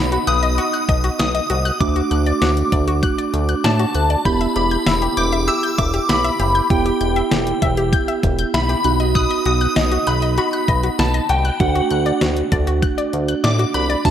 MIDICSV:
0, 0, Header, 1, 6, 480
1, 0, Start_track
1, 0, Key_signature, 1, "minor"
1, 0, Tempo, 612245
1, 1416, Time_signature, 4, 2, 24, 8
1, 11060, End_track
2, 0, Start_track
2, 0, Title_t, "Synth bell"
2, 0, Program_c, 0, 98
2, 0, Note_on_c, 0, 83, 90
2, 215, Note_on_c, 0, 87, 94
2, 230, Note_off_c, 0, 83, 0
2, 926, Note_off_c, 0, 87, 0
2, 935, Note_on_c, 0, 87, 95
2, 1415, Note_on_c, 0, 86, 93
2, 1430, Note_off_c, 0, 87, 0
2, 2855, Note_on_c, 0, 81, 88
2, 2898, Note_off_c, 0, 86, 0
2, 3335, Note_on_c, 0, 83, 94
2, 3350, Note_off_c, 0, 81, 0
2, 3565, Note_off_c, 0, 83, 0
2, 3575, Note_on_c, 0, 83, 97
2, 4054, Note_on_c, 0, 86, 95
2, 4070, Note_off_c, 0, 83, 0
2, 4293, Note_on_c, 0, 88, 104
2, 4302, Note_off_c, 0, 86, 0
2, 4534, Note_on_c, 0, 86, 99
2, 4542, Note_off_c, 0, 88, 0
2, 4774, Note_on_c, 0, 83, 92
2, 4782, Note_off_c, 0, 86, 0
2, 5254, Note_on_c, 0, 79, 84
2, 5269, Note_off_c, 0, 83, 0
2, 6184, Note_off_c, 0, 79, 0
2, 6696, Note_on_c, 0, 83, 99
2, 7175, Note_on_c, 0, 87, 107
2, 7190, Note_off_c, 0, 83, 0
2, 7408, Note_off_c, 0, 87, 0
2, 7418, Note_on_c, 0, 87, 105
2, 7897, Note_on_c, 0, 83, 90
2, 7911, Note_off_c, 0, 87, 0
2, 8005, Note_off_c, 0, 83, 0
2, 8137, Note_on_c, 0, 83, 90
2, 8617, Note_on_c, 0, 81, 87
2, 8631, Note_off_c, 0, 83, 0
2, 8725, Note_off_c, 0, 81, 0
2, 8857, Note_on_c, 0, 79, 81
2, 9097, Note_on_c, 0, 78, 76
2, 9103, Note_off_c, 0, 79, 0
2, 9545, Note_off_c, 0, 78, 0
2, 10535, Note_on_c, 0, 86, 97
2, 10643, Note_off_c, 0, 86, 0
2, 10775, Note_on_c, 0, 83, 89
2, 10883, Note_off_c, 0, 83, 0
2, 11015, Note_on_c, 0, 81, 90
2, 11060, Note_off_c, 0, 81, 0
2, 11060, End_track
3, 0, Start_track
3, 0, Title_t, "Synth arpeggio sound"
3, 0, Program_c, 1, 84
3, 95, Note_on_c, 1, 66, 72
3, 156, Note_off_c, 1, 66, 0
3, 214, Note_on_c, 1, 90, 88
3, 276, Note_off_c, 1, 90, 0
3, 334, Note_on_c, 1, 75, 73
3, 396, Note_off_c, 1, 75, 0
3, 455, Note_on_c, 1, 66, 84
3, 516, Note_off_c, 1, 66, 0
3, 575, Note_on_c, 1, 90, 81
3, 636, Note_off_c, 1, 90, 0
3, 696, Note_on_c, 1, 75, 77
3, 757, Note_off_c, 1, 75, 0
3, 816, Note_on_c, 1, 66, 68
3, 877, Note_off_c, 1, 66, 0
3, 1055, Note_on_c, 1, 75, 71
3, 1116, Note_off_c, 1, 75, 0
3, 1175, Note_on_c, 1, 66, 77
3, 1236, Note_off_c, 1, 66, 0
3, 1295, Note_on_c, 1, 90, 80
3, 1356, Note_off_c, 1, 90, 0
3, 1535, Note_on_c, 1, 66, 72
3, 1596, Note_off_c, 1, 66, 0
3, 1655, Note_on_c, 1, 90, 85
3, 1716, Note_off_c, 1, 90, 0
3, 1776, Note_on_c, 1, 74, 71
3, 1837, Note_off_c, 1, 74, 0
3, 1895, Note_on_c, 1, 66, 83
3, 1956, Note_off_c, 1, 66, 0
3, 2135, Note_on_c, 1, 74, 81
3, 2196, Note_off_c, 1, 74, 0
3, 2255, Note_on_c, 1, 66, 68
3, 2316, Note_off_c, 1, 66, 0
3, 2375, Note_on_c, 1, 90, 91
3, 2436, Note_off_c, 1, 90, 0
3, 2496, Note_on_c, 1, 74, 73
3, 2557, Note_off_c, 1, 74, 0
3, 2735, Note_on_c, 1, 90, 74
3, 2796, Note_off_c, 1, 90, 0
3, 2855, Note_on_c, 1, 74, 83
3, 2916, Note_off_c, 1, 74, 0
3, 2975, Note_on_c, 1, 66, 70
3, 3036, Note_off_c, 1, 66, 0
3, 3095, Note_on_c, 1, 90, 80
3, 3156, Note_off_c, 1, 90, 0
3, 3216, Note_on_c, 1, 74, 75
3, 3277, Note_off_c, 1, 74, 0
3, 3336, Note_on_c, 1, 91, 99
3, 3397, Note_off_c, 1, 91, 0
3, 3456, Note_on_c, 1, 76, 74
3, 3517, Note_off_c, 1, 76, 0
3, 3576, Note_on_c, 1, 67, 75
3, 3637, Note_off_c, 1, 67, 0
3, 3696, Note_on_c, 1, 91, 76
3, 3757, Note_off_c, 1, 91, 0
3, 3816, Note_on_c, 1, 76, 88
3, 3877, Note_off_c, 1, 76, 0
3, 3935, Note_on_c, 1, 67, 73
3, 3996, Note_off_c, 1, 67, 0
3, 4055, Note_on_c, 1, 91, 83
3, 4116, Note_off_c, 1, 91, 0
3, 4175, Note_on_c, 1, 76, 74
3, 4236, Note_off_c, 1, 76, 0
3, 4295, Note_on_c, 1, 67, 83
3, 4356, Note_off_c, 1, 67, 0
3, 4415, Note_on_c, 1, 91, 80
3, 4476, Note_off_c, 1, 91, 0
3, 4535, Note_on_c, 1, 76, 78
3, 4596, Note_off_c, 1, 76, 0
3, 4654, Note_on_c, 1, 67, 68
3, 4716, Note_off_c, 1, 67, 0
3, 4895, Note_on_c, 1, 76, 72
3, 4956, Note_off_c, 1, 76, 0
3, 5015, Note_on_c, 1, 67, 74
3, 5076, Note_off_c, 1, 67, 0
3, 5135, Note_on_c, 1, 91, 79
3, 5196, Note_off_c, 1, 91, 0
3, 5375, Note_on_c, 1, 67, 74
3, 5436, Note_off_c, 1, 67, 0
3, 5495, Note_on_c, 1, 91, 82
3, 5556, Note_off_c, 1, 91, 0
3, 5616, Note_on_c, 1, 76, 71
3, 5677, Note_off_c, 1, 76, 0
3, 5735, Note_on_c, 1, 67, 82
3, 5796, Note_off_c, 1, 67, 0
3, 5975, Note_on_c, 1, 76, 81
3, 6036, Note_off_c, 1, 76, 0
3, 6096, Note_on_c, 1, 67, 73
3, 6157, Note_off_c, 1, 67, 0
3, 6215, Note_on_c, 1, 91, 92
3, 6276, Note_off_c, 1, 91, 0
3, 6335, Note_on_c, 1, 76, 72
3, 6396, Note_off_c, 1, 76, 0
3, 6576, Note_on_c, 1, 91, 75
3, 6637, Note_off_c, 1, 91, 0
3, 6695, Note_on_c, 1, 76, 83
3, 6756, Note_off_c, 1, 76, 0
3, 6815, Note_on_c, 1, 67, 72
3, 6876, Note_off_c, 1, 67, 0
3, 6936, Note_on_c, 1, 90, 83
3, 6997, Note_off_c, 1, 90, 0
3, 7055, Note_on_c, 1, 75, 76
3, 7116, Note_off_c, 1, 75, 0
3, 7176, Note_on_c, 1, 90, 100
3, 7237, Note_off_c, 1, 90, 0
3, 7296, Note_on_c, 1, 75, 72
3, 7357, Note_off_c, 1, 75, 0
3, 7416, Note_on_c, 1, 66, 77
3, 7477, Note_off_c, 1, 66, 0
3, 7535, Note_on_c, 1, 90, 76
3, 7596, Note_off_c, 1, 90, 0
3, 7655, Note_on_c, 1, 75, 86
3, 7716, Note_off_c, 1, 75, 0
3, 7775, Note_on_c, 1, 66, 71
3, 7836, Note_off_c, 1, 66, 0
3, 7895, Note_on_c, 1, 90, 86
3, 7956, Note_off_c, 1, 90, 0
3, 8016, Note_on_c, 1, 75, 72
3, 8077, Note_off_c, 1, 75, 0
3, 8136, Note_on_c, 1, 66, 88
3, 8197, Note_off_c, 1, 66, 0
3, 8256, Note_on_c, 1, 90, 80
3, 8317, Note_off_c, 1, 90, 0
3, 8376, Note_on_c, 1, 75, 77
3, 8437, Note_off_c, 1, 75, 0
3, 8496, Note_on_c, 1, 66, 70
3, 8557, Note_off_c, 1, 66, 0
3, 8735, Note_on_c, 1, 75, 70
3, 8796, Note_off_c, 1, 75, 0
3, 8855, Note_on_c, 1, 66, 73
3, 8916, Note_off_c, 1, 66, 0
3, 8975, Note_on_c, 1, 90, 81
3, 9036, Note_off_c, 1, 90, 0
3, 9215, Note_on_c, 1, 66, 71
3, 9276, Note_off_c, 1, 66, 0
3, 9335, Note_on_c, 1, 90, 86
3, 9396, Note_off_c, 1, 90, 0
3, 9455, Note_on_c, 1, 74, 73
3, 9516, Note_off_c, 1, 74, 0
3, 9575, Note_on_c, 1, 66, 80
3, 9636, Note_off_c, 1, 66, 0
3, 9815, Note_on_c, 1, 74, 82
3, 9876, Note_off_c, 1, 74, 0
3, 9935, Note_on_c, 1, 66, 73
3, 9996, Note_off_c, 1, 66, 0
3, 10054, Note_on_c, 1, 90, 94
3, 10116, Note_off_c, 1, 90, 0
3, 10175, Note_on_c, 1, 74, 72
3, 10236, Note_off_c, 1, 74, 0
3, 10415, Note_on_c, 1, 90, 76
3, 10476, Note_off_c, 1, 90, 0
3, 10535, Note_on_c, 1, 74, 86
3, 10596, Note_off_c, 1, 74, 0
3, 10655, Note_on_c, 1, 66, 70
3, 10716, Note_off_c, 1, 66, 0
3, 10775, Note_on_c, 1, 90, 81
3, 10836, Note_off_c, 1, 90, 0
3, 10894, Note_on_c, 1, 74, 76
3, 10956, Note_off_c, 1, 74, 0
3, 11060, End_track
4, 0, Start_track
4, 0, Title_t, "Synth keys"
4, 0, Program_c, 2, 88
4, 0, Note_on_c, 2, 59, 63
4, 0, Note_on_c, 2, 63, 60
4, 0, Note_on_c, 2, 66, 72
4, 1144, Note_off_c, 2, 59, 0
4, 1144, Note_off_c, 2, 63, 0
4, 1144, Note_off_c, 2, 66, 0
4, 1415, Note_on_c, 2, 57, 63
4, 1415, Note_on_c, 2, 62, 59
4, 1415, Note_on_c, 2, 66, 68
4, 3304, Note_off_c, 2, 57, 0
4, 3304, Note_off_c, 2, 62, 0
4, 3304, Note_off_c, 2, 66, 0
4, 3334, Note_on_c, 2, 59, 64
4, 3334, Note_on_c, 2, 64, 60
4, 3334, Note_on_c, 2, 67, 71
4, 5223, Note_off_c, 2, 64, 0
4, 5224, Note_off_c, 2, 59, 0
4, 5224, Note_off_c, 2, 67, 0
4, 5256, Note_on_c, 2, 59, 66
4, 5256, Note_on_c, 2, 64, 60
4, 5256, Note_on_c, 2, 67, 70
4, 6904, Note_off_c, 2, 59, 0
4, 6904, Note_off_c, 2, 64, 0
4, 6904, Note_off_c, 2, 67, 0
4, 6936, Note_on_c, 2, 59, 65
4, 6936, Note_on_c, 2, 63, 60
4, 6936, Note_on_c, 2, 66, 72
4, 8824, Note_off_c, 2, 59, 0
4, 8825, Note_off_c, 2, 63, 0
4, 8825, Note_off_c, 2, 66, 0
4, 9095, Note_on_c, 2, 66, 74
4, 9096, Note_on_c, 2, 57, 64
4, 9096, Note_on_c, 2, 62, 60
4, 10984, Note_off_c, 2, 57, 0
4, 10984, Note_off_c, 2, 62, 0
4, 10984, Note_off_c, 2, 66, 0
4, 11016, Note_on_c, 2, 57, 65
4, 11016, Note_on_c, 2, 62, 61
4, 11016, Note_on_c, 2, 66, 72
4, 11060, Note_off_c, 2, 57, 0
4, 11060, Note_off_c, 2, 62, 0
4, 11060, Note_off_c, 2, 66, 0
4, 11060, End_track
5, 0, Start_track
5, 0, Title_t, "Analog synth bass"
5, 0, Program_c, 3, 38
5, 0, Note_on_c, 3, 35, 101
5, 143, Note_off_c, 3, 35, 0
5, 215, Note_on_c, 3, 35, 100
5, 467, Note_off_c, 3, 35, 0
5, 695, Note_on_c, 3, 35, 97
5, 863, Note_off_c, 3, 35, 0
5, 935, Note_on_c, 3, 35, 96
5, 1103, Note_off_c, 3, 35, 0
5, 1176, Note_on_c, 3, 36, 85
5, 1344, Note_off_c, 3, 36, 0
5, 1416, Note_on_c, 3, 38, 98
5, 1584, Note_off_c, 3, 38, 0
5, 1655, Note_on_c, 3, 38, 109
5, 1824, Note_off_c, 3, 38, 0
5, 1895, Note_on_c, 3, 38, 96
5, 2063, Note_off_c, 3, 38, 0
5, 2135, Note_on_c, 3, 38, 99
5, 2387, Note_off_c, 3, 38, 0
5, 2615, Note_on_c, 3, 38, 101
5, 2783, Note_off_c, 3, 38, 0
5, 2855, Note_on_c, 3, 45, 94
5, 3023, Note_off_c, 3, 45, 0
5, 3094, Note_on_c, 3, 38, 84
5, 3263, Note_off_c, 3, 38, 0
5, 3335, Note_on_c, 3, 28, 115
5, 3503, Note_off_c, 3, 28, 0
5, 3575, Note_on_c, 3, 28, 98
5, 3743, Note_off_c, 3, 28, 0
5, 3815, Note_on_c, 3, 28, 92
5, 3983, Note_off_c, 3, 28, 0
5, 4055, Note_on_c, 3, 28, 99
5, 4307, Note_off_c, 3, 28, 0
5, 4535, Note_on_c, 3, 28, 98
5, 4703, Note_off_c, 3, 28, 0
5, 4775, Note_on_c, 3, 35, 86
5, 4943, Note_off_c, 3, 35, 0
5, 5015, Note_on_c, 3, 30, 97
5, 5183, Note_off_c, 3, 30, 0
5, 5255, Note_on_c, 3, 28, 101
5, 5423, Note_off_c, 3, 28, 0
5, 5495, Note_on_c, 3, 28, 99
5, 5663, Note_off_c, 3, 28, 0
5, 5735, Note_on_c, 3, 28, 104
5, 5903, Note_off_c, 3, 28, 0
5, 5975, Note_on_c, 3, 28, 101
5, 6227, Note_off_c, 3, 28, 0
5, 6455, Note_on_c, 3, 28, 100
5, 6623, Note_off_c, 3, 28, 0
5, 6696, Note_on_c, 3, 35, 99
5, 6864, Note_off_c, 3, 35, 0
5, 6935, Note_on_c, 3, 35, 99
5, 7271, Note_off_c, 3, 35, 0
5, 7415, Note_on_c, 3, 35, 105
5, 7583, Note_off_c, 3, 35, 0
5, 7655, Note_on_c, 3, 35, 103
5, 7823, Note_off_c, 3, 35, 0
5, 7896, Note_on_c, 3, 35, 98
5, 8148, Note_off_c, 3, 35, 0
5, 8375, Note_on_c, 3, 35, 102
5, 8543, Note_off_c, 3, 35, 0
5, 8616, Note_on_c, 3, 35, 95
5, 8784, Note_off_c, 3, 35, 0
5, 8855, Note_on_c, 3, 36, 86
5, 9023, Note_off_c, 3, 36, 0
5, 9095, Note_on_c, 3, 38, 113
5, 9263, Note_off_c, 3, 38, 0
5, 9336, Note_on_c, 3, 38, 101
5, 9504, Note_off_c, 3, 38, 0
5, 9576, Note_on_c, 3, 38, 100
5, 9744, Note_off_c, 3, 38, 0
5, 9815, Note_on_c, 3, 38, 100
5, 10067, Note_off_c, 3, 38, 0
5, 10296, Note_on_c, 3, 38, 100
5, 10464, Note_off_c, 3, 38, 0
5, 10535, Note_on_c, 3, 45, 91
5, 10703, Note_off_c, 3, 45, 0
5, 10776, Note_on_c, 3, 36, 92
5, 10944, Note_off_c, 3, 36, 0
5, 11016, Note_on_c, 3, 38, 105
5, 11060, Note_off_c, 3, 38, 0
5, 11060, End_track
6, 0, Start_track
6, 0, Title_t, "Drums"
6, 95, Note_on_c, 9, 42, 61
6, 173, Note_off_c, 9, 42, 0
6, 214, Note_on_c, 9, 42, 83
6, 292, Note_off_c, 9, 42, 0
6, 334, Note_on_c, 9, 42, 52
6, 413, Note_off_c, 9, 42, 0
6, 455, Note_on_c, 9, 42, 64
6, 534, Note_off_c, 9, 42, 0
6, 578, Note_on_c, 9, 42, 48
6, 656, Note_off_c, 9, 42, 0
6, 695, Note_on_c, 9, 36, 94
6, 697, Note_on_c, 9, 42, 65
6, 774, Note_off_c, 9, 36, 0
6, 775, Note_off_c, 9, 42, 0
6, 815, Note_on_c, 9, 42, 55
6, 893, Note_off_c, 9, 42, 0
6, 937, Note_on_c, 9, 38, 107
6, 938, Note_on_c, 9, 42, 76
6, 1016, Note_off_c, 9, 38, 0
6, 1016, Note_off_c, 9, 42, 0
6, 1056, Note_on_c, 9, 42, 53
6, 1134, Note_off_c, 9, 42, 0
6, 1175, Note_on_c, 9, 42, 74
6, 1253, Note_off_c, 9, 42, 0
6, 1297, Note_on_c, 9, 42, 47
6, 1375, Note_off_c, 9, 42, 0
6, 1416, Note_on_c, 9, 36, 108
6, 1417, Note_on_c, 9, 42, 57
6, 1494, Note_off_c, 9, 36, 0
6, 1495, Note_off_c, 9, 42, 0
6, 1537, Note_on_c, 9, 42, 51
6, 1615, Note_off_c, 9, 42, 0
6, 1654, Note_on_c, 9, 42, 62
6, 1733, Note_off_c, 9, 42, 0
6, 1775, Note_on_c, 9, 42, 45
6, 1853, Note_off_c, 9, 42, 0
6, 1895, Note_on_c, 9, 38, 107
6, 1897, Note_on_c, 9, 42, 63
6, 1973, Note_off_c, 9, 38, 0
6, 1976, Note_off_c, 9, 42, 0
6, 2015, Note_on_c, 9, 42, 61
6, 2093, Note_off_c, 9, 42, 0
6, 2134, Note_on_c, 9, 42, 82
6, 2135, Note_on_c, 9, 36, 90
6, 2213, Note_off_c, 9, 36, 0
6, 2213, Note_off_c, 9, 42, 0
6, 2255, Note_on_c, 9, 42, 52
6, 2333, Note_off_c, 9, 42, 0
6, 2374, Note_on_c, 9, 36, 88
6, 2375, Note_on_c, 9, 42, 62
6, 2452, Note_off_c, 9, 36, 0
6, 2453, Note_off_c, 9, 42, 0
6, 2497, Note_on_c, 9, 42, 49
6, 2576, Note_off_c, 9, 42, 0
6, 2616, Note_on_c, 9, 42, 66
6, 2694, Note_off_c, 9, 42, 0
6, 2734, Note_on_c, 9, 42, 54
6, 2813, Note_off_c, 9, 42, 0
6, 2857, Note_on_c, 9, 38, 107
6, 2857, Note_on_c, 9, 42, 74
6, 2935, Note_off_c, 9, 38, 0
6, 2936, Note_off_c, 9, 42, 0
6, 2975, Note_on_c, 9, 42, 54
6, 3053, Note_off_c, 9, 42, 0
6, 3093, Note_on_c, 9, 42, 73
6, 3172, Note_off_c, 9, 42, 0
6, 3215, Note_on_c, 9, 42, 45
6, 3293, Note_off_c, 9, 42, 0
6, 3335, Note_on_c, 9, 36, 107
6, 3335, Note_on_c, 9, 42, 57
6, 3413, Note_off_c, 9, 36, 0
6, 3414, Note_off_c, 9, 42, 0
6, 3455, Note_on_c, 9, 42, 49
6, 3534, Note_off_c, 9, 42, 0
6, 3573, Note_on_c, 9, 42, 66
6, 3652, Note_off_c, 9, 42, 0
6, 3694, Note_on_c, 9, 42, 45
6, 3772, Note_off_c, 9, 42, 0
6, 3814, Note_on_c, 9, 38, 106
6, 3816, Note_on_c, 9, 42, 63
6, 3892, Note_off_c, 9, 38, 0
6, 3894, Note_off_c, 9, 42, 0
6, 3935, Note_on_c, 9, 42, 58
6, 4013, Note_off_c, 9, 42, 0
6, 4054, Note_on_c, 9, 42, 82
6, 4133, Note_off_c, 9, 42, 0
6, 4175, Note_on_c, 9, 42, 54
6, 4253, Note_off_c, 9, 42, 0
6, 4295, Note_on_c, 9, 42, 61
6, 4374, Note_off_c, 9, 42, 0
6, 4418, Note_on_c, 9, 42, 49
6, 4496, Note_off_c, 9, 42, 0
6, 4535, Note_on_c, 9, 36, 91
6, 4536, Note_on_c, 9, 42, 65
6, 4614, Note_off_c, 9, 36, 0
6, 4615, Note_off_c, 9, 42, 0
6, 4655, Note_on_c, 9, 42, 56
6, 4733, Note_off_c, 9, 42, 0
6, 4777, Note_on_c, 9, 38, 108
6, 4778, Note_on_c, 9, 42, 73
6, 4856, Note_off_c, 9, 38, 0
6, 4856, Note_off_c, 9, 42, 0
6, 4896, Note_on_c, 9, 42, 54
6, 4974, Note_off_c, 9, 42, 0
6, 5014, Note_on_c, 9, 42, 73
6, 5093, Note_off_c, 9, 42, 0
6, 5136, Note_on_c, 9, 42, 45
6, 5214, Note_off_c, 9, 42, 0
6, 5255, Note_on_c, 9, 36, 111
6, 5256, Note_on_c, 9, 42, 59
6, 5334, Note_off_c, 9, 36, 0
6, 5334, Note_off_c, 9, 42, 0
6, 5376, Note_on_c, 9, 42, 51
6, 5454, Note_off_c, 9, 42, 0
6, 5494, Note_on_c, 9, 42, 67
6, 5572, Note_off_c, 9, 42, 0
6, 5615, Note_on_c, 9, 42, 45
6, 5693, Note_off_c, 9, 42, 0
6, 5735, Note_on_c, 9, 38, 106
6, 5737, Note_on_c, 9, 42, 62
6, 5813, Note_off_c, 9, 38, 0
6, 5815, Note_off_c, 9, 42, 0
6, 5855, Note_on_c, 9, 42, 61
6, 5933, Note_off_c, 9, 42, 0
6, 5974, Note_on_c, 9, 42, 83
6, 5975, Note_on_c, 9, 36, 88
6, 6053, Note_off_c, 9, 36, 0
6, 6053, Note_off_c, 9, 42, 0
6, 6095, Note_on_c, 9, 42, 53
6, 6173, Note_off_c, 9, 42, 0
6, 6214, Note_on_c, 9, 36, 91
6, 6215, Note_on_c, 9, 42, 61
6, 6293, Note_off_c, 9, 36, 0
6, 6294, Note_off_c, 9, 42, 0
6, 6337, Note_on_c, 9, 42, 49
6, 6416, Note_off_c, 9, 42, 0
6, 6455, Note_on_c, 9, 36, 91
6, 6455, Note_on_c, 9, 42, 65
6, 6534, Note_off_c, 9, 36, 0
6, 6534, Note_off_c, 9, 42, 0
6, 6574, Note_on_c, 9, 42, 54
6, 6653, Note_off_c, 9, 42, 0
6, 6697, Note_on_c, 9, 38, 104
6, 6698, Note_on_c, 9, 42, 74
6, 6776, Note_off_c, 9, 38, 0
6, 6776, Note_off_c, 9, 42, 0
6, 6815, Note_on_c, 9, 42, 52
6, 6894, Note_off_c, 9, 42, 0
6, 6933, Note_on_c, 9, 42, 77
6, 7012, Note_off_c, 9, 42, 0
6, 7055, Note_on_c, 9, 42, 46
6, 7133, Note_off_c, 9, 42, 0
6, 7175, Note_on_c, 9, 36, 107
6, 7175, Note_on_c, 9, 42, 58
6, 7253, Note_off_c, 9, 36, 0
6, 7253, Note_off_c, 9, 42, 0
6, 7295, Note_on_c, 9, 42, 51
6, 7374, Note_off_c, 9, 42, 0
6, 7413, Note_on_c, 9, 42, 66
6, 7492, Note_off_c, 9, 42, 0
6, 7534, Note_on_c, 9, 42, 46
6, 7612, Note_off_c, 9, 42, 0
6, 7654, Note_on_c, 9, 38, 111
6, 7656, Note_on_c, 9, 42, 62
6, 7732, Note_off_c, 9, 38, 0
6, 7734, Note_off_c, 9, 42, 0
6, 7774, Note_on_c, 9, 42, 60
6, 7852, Note_off_c, 9, 42, 0
6, 7893, Note_on_c, 9, 42, 85
6, 7972, Note_off_c, 9, 42, 0
6, 8013, Note_on_c, 9, 42, 53
6, 8092, Note_off_c, 9, 42, 0
6, 8135, Note_on_c, 9, 42, 61
6, 8213, Note_off_c, 9, 42, 0
6, 8256, Note_on_c, 9, 42, 48
6, 8335, Note_off_c, 9, 42, 0
6, 8375, Note_on_c, 9, 36, 93
6, 8375, Note_on_c, 9, 42, 66
6, 8454, Note_off_c, 9, 36, 0
6, 8454, Note_off_c, 9, 42, 0
6, 8494, Note_on_c, 9, 42, 54
6, 8572, Note_off_c, 9, 42, 0
6, 8617, Note_on_c, 9, 38, 104
6, 8617, Note_on_c, 9, 42, 72
6, 8695, Note_off_c, 9, 38, 0
6, 8696, Note_off_c, 9, 42, 0
6, 8735, Note_on_c, 9, 42, 54
6, 8814, Note_off_c, 9, 42, 0
6, 8854, Note_on_c, 9, 42, 74
6, 8932, Note_off_c, 9, 42, 0
6, 8975, Note_on_c, 9, 42, 46
6, 9053, Note_off_c, 9, 42, 0
6, 9095, Note_on_c, 9, 36, 114
6, 9095, Note_on_c, 9, 42, 58
6, 9174, Note_off_c, 9, 36, 0
6, 9174, Note_off_c, 9, 42, 0
6, 9216, Note_on_c, 9, 42, 48
6, 9294, Note_off_c, 9, 42, 0
6, 9334, Note_on_c, 9, 42, 65
6, 9412, Note_off_c, 9, 42, 0
6, 9454, Note_on_c, 9, 42, 45
6, 9533, Note_off_c, 9, 42, 0
6, 9575, Note_on_c, 9, 38, 109
6, 9577, Note_on_c, 9, 42, 65
6, 9653, Note_off_c, 9, 38, 0
6, 9656, Note_off_c, 9, 42, 0
6, 9695, Note_on_c, 9, 42, 60
6, 9773, Note_off_c, 9, 42, 0
6, 9814, Note_on_c, 9, 42, 84
6, 9815, Note_on_c, 9, 36, 90
6, 9893, Note_off_c, 9, 36, 0
6, 9893, Note_off_c, 9, 42, 0
6, 9935, Note_on_c, 9, 42, 53
6, 10013, Note_off_c, 9, 42, 0
6, 10054, Note_on_c, 9, 36, 93
6, 10055, Note_on_c, 9, 42, 59
6, 10133, Note_off_c, 9, 36, 0
6, 10134, Note_off_c, 9, 42, 0
6, 10177, Note_on_c, 9, 42, 50
6, 10256, Note_off_c, 9, 42, 0
6, 10296, Note_on_c, 9, 42, 64
6, 10375, Note_off_c, 9, 42, 0
6, 10415, Note_on_c, 9, 42, 57
6, 10494, Note_off_c, 9, 42, 0
6, 10538, Note_on_c, 9, 38, 112
6, 10539, Note_on_c, 9, 42, 74
6, 10616, Note_off_c, 9, 38, 0
6, 10617, Note_off_c, 9, 42, 0
6, 10657, Note_on_c, 9, 42, 55
6, 10735, Note_off_c, 9, 42, 0
6, 10775, Note_on_c, 9, 42, 73
6, 10853, Note_off_c, 9, 42, 0
6, 10896, Note_on_c, 9, 42, 44
6, 10975, Note_off_c, 9, 42, 0
6, 11015, Note_on_c, 9, 36, 113
6, 11016, Note_on_c, 9, 42, 60
6, 11016, Note_on_c, 9, 49, 95
6, 11060, Note_off_c, 9, 36, 0
6, 11060, Note_off_c, 9, 42, 0
6, 11060, Note_off_c, 9, 49, 0
6, 11060, End_track
0, 0, End_of_file